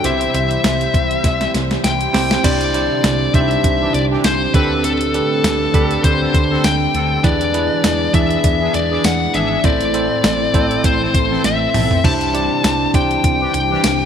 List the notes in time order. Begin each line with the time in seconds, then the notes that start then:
0.04 C2 C3 E3 G3 C4 E4 G4 C5 E5, closed hi-hat
0.21 closed hi-hat
0.34 C2 E5, closed hi-hat
0.51 closed hi-hat
0.64 C2, snare, closed hi-hat
0.81 closed hi-hat
0.94 C2, kick, closed hi-hat
1.11 closed hi-hat
1.24 C2, kick, snare, closed hi-hat
1.41 snare, closed hi-hat
1.54 C2, snare, closed hi-hat
1.71 snare, closed hi-hat
1.84 C2 G5, snare, closed hi-hat
2.01 closed hi-hat
2.13 C2 C4 E4 G4 C5, snare, open hi-hat
2.31 snare, closed hi-hat
2.43 C2 C3 D3 G3 C4 D4 E4 G4 C5 D5, kick, closed hi-hat, crash
2.61 closed hi-hat
2.74 D4 E4 G4 C5, closed hi-hat
3.04 C2, snare, closed hi-hat
3.34 C2 D4 D#4 G4 C5 E5, kick, closed hi-hat
3.41 E4
3.51 closed hi-hat
3.64 C2, kick, closed hi-hat
3.81 E3 D4 G4
3.94 C2 D5, closed hi-hat
4.10 E3 D4 G4
4.24 C2 C5, snare, closed hi-hat
4.54 D2 D3 A3 C4 D4 G4 A4 B4, kick, closed hi-hat
4.84 A4, closed hi-hat
5.01 closed hi-hat
5.14 D4 G4 A4 B4, closed hi-hat
5.44 D2, snare, closed hi-hat, tambourine
5.74 D2 D4 G4 A4 B5, kick, closed hi-hat
5.91 closed hi-hat
6.04 D2 C5, kick, closed hi-hat
6.21 D3 C4 A4
6.34 D2, kick, closed hi-hat
6.50 D3 C4 A4
6.64 D2 G5, snare, closed hi-hat, tambourine
6.94 D2 D3 C4 A4, closed hi-hat
7.23 E2 E3 G#3 B3 D4 E4 G#4 B4 D5, kick, closed hi-hat
7.41 closed hi-hat
7.53 D4 E4 G#4 B4, closed hi-hat
7.84 E2, snare, closed hi-hat, tambourine
8.13 E2 D4 E4 G#4 D5 E5, kick, closed hi-hat
8.30 closed hi-hat
8.44 E2, kick, closed hi-hat
8.61 E3 D4 G#4
8.74 E2 D5, closed hi-hat
8.91 E3 D4 G#4
9.04 E2 F#5, snare, closed hi-hat, tambourine
9.34 G#1 E3 D4 G#4 E5, closed hi-hat
9.64 A1 A2 E3 A3 C4 E4 A4 C5 D5, kick, closed hi-hat
9.81 closed hi-hat
9.94 C4 E4 A4 C5, closed hi-hat
10.24 A1, snare, closed hi-hat, tambourine
10.54 A1 C4 E4 A4 C5, kick, closed hi-hat
10.71 closed hi-hat
10.84 A1 C5, kick, closed hi-hat
11.00 E3 C4 A4
11.14 A1, kick, closed hi-hat
11.31 E3 C4 A4
11.44 A1 E5, snare, closed hi-hat
11.74 B1 E3 C4 A4, mid tom, open hi-hat
11.91 floor tom
12.04 C2 C3 E3 G3 D4 E4 G4 C5 A5, kick, crash
12.21 closed hi-hat
12.34 D4 E4 G4 D5, closed hi-hat
12.64 C2, snare, closed hi-hat, tambourine
12.94 C2 D4 E4 G4 C5 G5, kick, closed hi-hat
13.11 closed hi-hat
13.24 C2, kick, closed hi-hat
13.41 E3 D4 G4
13.54 C2 G5, closed hi-hat
13.71 E3 D4 G4
13.84 C2, snare, closed hi-hat, tambourine